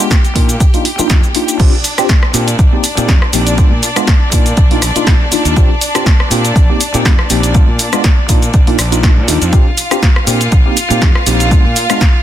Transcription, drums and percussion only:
0.11 kick loud
0.11 snare loud
0.11 closed hi-hat medium
0.11 shaker medium
0.25 closed hi-hat medium
0.25 shaker soft
0.36 kick medium
0.36 open hi-hat loud
0.49 closed hi-hat medium
0.49 shaker medium
0.60 kick loud
0.60 closed hi-hat medium
0.60 shaker medium
0.74 open hi-hat medium
0.74 shaker soft
0.85 open hi-hat loud
0.99 closed hi-hat soft
0.99 shaker medium
1.10 kick loud
1.10 snare loud
1.10 closed hi-hat medium
1.10 shaker medium
1.24 closed hi-hat soft
1.24 shaker soft
1.35 open hi-hat loud
1.48 closed hi-hat soft
1.48 shaker medium
1.60 kick loud
1.60 closed hi-hat medium
1.60 crash loud
1.60 shaker soft
1.84 open hi-hat loud
1.84 shaker medium
1.98 cross-stick medium
1.98 closed hi-hat medium
1.98 shaker soft
2.09 kick loud
2.09 snare loud
2.09 closed hi-hat medium
2.09 shaker soft
2.23 cross-stick medium
2.34 open hi-hat loud
2.34 shaker medium
2.48 closed hi-hat medium
2.48 shaker soft
2.59 kick loud
2.59 closed hi-hat medium
2.59 shaker soft
2.84 open hi-hat loud
2.84 shaker medium
2.97 closed hi-hat medium
2.97 shaker soft
3.08 kick loud
3.08 snare loud
3.08 closed hi-hat medium
3.08 shaker soft
3.22 cross-stick medium
3.33 open hi-hat loud
3.33 shaker medium
3.47 closed hi-hat medium
3.47 shaker soft
3.58 kick loud
3.58 closed hi-hat medium
3.58 shaker soft
3.83 open hi-hat loud
3.83 shaker medium
3.96 cross-stick medium
3.96 closed hi-hat medium
3.96 shaker soft
4.07 kick loud
4.07 snare loud
4.07 closed hi-hat medium
4.07 shaker soft
4.32 kick medium
4.32 open hi-hat loud
4.32 shaker medium
4.46 closed hi-hat medium
4.46 shaker soft
4.57 kick loud
4.57 closed hi-hat medium
4.57 shaker soft
4.71 open hi-hat medium
4.82 cross-stick medium
4.82 open hi-hat loud
4.82 shaker medium
4.96 closed hi-hat medium
4.96 shaker soft
5.07 kick loud
5.07 snare loud
5.07 closed hi-hat medium
5.07 shaker soft
5.32 open hi-hat loud
5.32 shaker medium
5.45 closed hi-hat medium
5.45 shaker soft
5.56 kick loud
5.56 closed hi-hat medium
5.56 shaker soft
5.81 open hi-hat loud
5.81 shaker medium
5.95 cross-stick medium
5.95 closed hi-hat medium
5.95 shaker soft
6.06 kick loud
6.06 snare loud
6.06 closed hi-hat medium
6.06 shaker soft
6.20 cross-stick medium
6.31 open hi-hat loud
6.31 shaker medium
6.45 closed hi-hat medium
6.45 shaker soft
6.56 kick loud
6.56 closed hi-hat medium
6.56 shaker soft
6.81 open hi-hat loud
6.81 shaker medium
6.94 closed hi-hat medium
6.94 shaker soft
7.05 kick loud
7.05 snare loud
7.05 closed hi-hat medium
7.05 shaker soft
7.19 cross-stick medium
7.30 open hi-hat loud
7.30 shaker medium
7.43 closed hi-hat medium
7.43 shaker soft
7.55 kick loud
7.55 closed hi-hat medium
7.55 shaker soft
7.79 open hi-hat loud
7.79 shaker medium
7.93 cross-stick medium
7.93 closed hi-hat medium
7.93 shaker soft
8.04 kick loud
8.04 snare loud
8.04 closed hi-hat medium
8.04 shaker soft
8.29 kick medium
8.29 open hi-hat loud
8.29 shaker medium
8.42 closed hi-hat medium
8.42 shaker soft
8.54 kick loud
8.54 closed hi-hat medium
8.54 shaker soft
8.67 open hi-hat medium
8.79 cross-stick medium
8.79 open hi-hat loud
8.79 shaker medium
8.92 closed hi-hat medium
8.92 shaker soft
9.03 kick loud
9.03 snare loud
9.03 closed hi-hat soft
9.03 shaker soft
9.28 open hi-hat loud
9.28 shaker medium
9.42 closed hi-hat medium
9.42 shaker soft
9.53 kick loud
9.53 closed hi-hat soft
9.53 shaker soft
9.77 open hi-hat loud
9.77 shaker medium
9.91 cross-stick medium
9.91 closed hi-hat medium
9.91 shaker soft
10.03 kick loud
10.03 snare loud
10.03 closed hi-hat medium
10.03 shaker soft
10.16 cross-stick medium
10.27 open hi-hat loud
10.27 shaker medium
10.41 closed hi-hat medium
10.41 shaker soft
10.52 kick loud
10.52 closed hi-hat medium
10.52 shaker soft
10.77 open hi-hat loud
10.77 shaker medium
10.91 closed hi-hat medium
10.91 shaker soft
11.02 kick loud
11.02 snare loud
11.02 closed hi-hat soft
11.02 shaker soft
11.15 cross-stick medium
11.27 open hi-hat loud
11.27 shaker medium
11.40 closed hi-hat medium
11.40 shaker soft
11.51 kick loud
11.51 closed hi-hat medium
11.51 shaker soft
11.76 open hi-hat loud
11.76 shaker medium
11.90 cross-stick medium
11.90 closed hi-hat medium
11.90 shaker soft
12.01 kick loud
12.01 snare loud
12.01 closed hi-hat medium
12.01 shaker soft

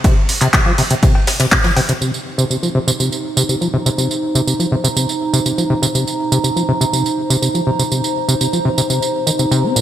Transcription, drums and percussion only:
0.04 kick loud
0.04 closed hi-hat medium
0.04 ride medium
0.29 open hi-hat loud
0.29 ride medium
0.41 clap soft
0.41 closed hi-hat medium
0.41 ride soft
0.53 kick loud
0.53 snare loud
0.53 clap loud
0.53 closed hi-hat medium
0.53 ride medium
0.53 cowbell medium
0.78 open hi-hat medium
0.78 ride medium
0.90 closed hi-hat medium
1.03 kick loud
1.03 closed hi-hat medium
1.03 ride medium
1.15 cowbell soft
1.27 snare loud
1.27 open hi-hat medium
1.27 open hi-hat loud
1.40 snare loud
1.40 closed hi-hat medium
1.40 open hi-hat medium
1.51 kick loud
1.51 snare loud
1.51 clap loud
1.51 closed hi-hat medium
1.64 snare loud
1.64 open hi-hat medium
1.76 open hi-hat medium
1.76 ride soft
1.76 cowbell medium
1.89 snare soft
1.89 closed hi-hat medium
1.89 ride medium
2.02 tambourine soft
2.14 tambourine soft
2.39 tambourine medium
2.51 tambourine medium
2.63 tambourine soft
2.88 tambourine medium
3.00 tambourine medium
3.12 tambourine soft
3.37 tambourine medium
3.49 tambourine medium
3.62 tambourine soft
3.86 tambourine medium
3.98 tambourine soft
4.11 tambourine soft
4.35 tambourine medium
4.48 tambourine soft
4.60 tambourine soft
4.84 tambourine medium
4.97 tambourine medium
5.09 tambourine soft
5.34 tambourine medium
5.46 tambourine medium
5.58 tambourine soft
5.83 tambourine medium
5.95 tambourine soft
6.07 tambourine soft
6.32 tambourine medium
6.44 tambourine medium
6.57 tambourine soft
6.81 tambourine medium
6.93 tambourine soft
7.06 tambourine soft
7.30 tambourine medium
7.42 tambourine soft
7.55 tambourine soft
7.79 tambourine medium
7.92 tambourine medium
8.04 tambourine soft
8.29 tambourine medium
8.41 tambourine medium
8.53 tambourine soft
8.78 tambourine medium
8.90 tambourine soft
9.02 tambourine soft
9.27 tambourine medium
9.39 tambourine medium
9.52 tambourine soft
9.76 tambourine medium

